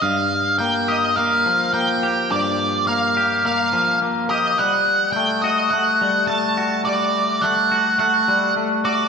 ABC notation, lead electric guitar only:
X:1
M:4/4
L:1/8
Q:1/4=105
K:Gm
V:1 name="Lead electric guitar"
f2 g e f2 g2 | d2 f2 f2 z e | ^f2 g e f2 a2 | d2 ^f2 f2 z d |]